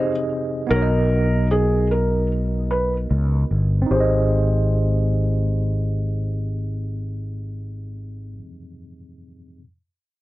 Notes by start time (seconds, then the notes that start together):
Already playing: C4 D#4 G4 G#4 C5 D#5
0.67 B1 B3 D#4 A#4
0.71 F#4 A#4
0.76 C#5
0.82 D#5
1.51 G#4
1.91 A#4
2.71 B4
3.11 C#2
3.51 G1
3.82 C4
3.86 D#4
3.90 G#1 G4 C5
3.95 G#4
4.00 D#5